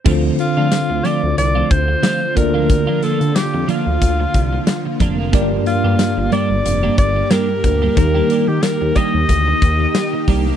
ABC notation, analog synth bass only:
X:1
M:4/4
L:1/16
Q:"Swing 16ths" 1/4=91
K:Dphr
V:1 name="Analog synth bass" clef=bass
D,,2 z D, z D,, z D,, C,,2 D,,2 z2 D,,2- | D,,2 z D, z F,, z D,, D,,2 C,,2 z2 F,,,2 | G,,,2 z G,, z G,,, z G,,, F,,,2 G,,,2 z2 D,,2 | E,,2 z E, z E,, z E,, D,,2 E,,2 z2 C,,2 |]